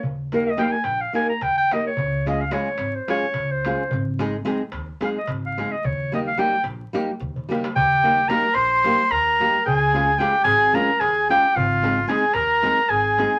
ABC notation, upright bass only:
X:1
M:7/8
L:1/8
Q:1/4=110
K:Ebmix
V:1 name="Upright bass" clef=bass
E,,3 B,,, z E,,2 | D,,3 A,,, z D,,2 | A,,,3 E,, z A,,,2 | E,,3 B,,, z E,,2 |
E,,3 B,,,2 E,,2 | D,,3 A,,,2 E,,2 | A,,,3 E,,2 A,,,2 |]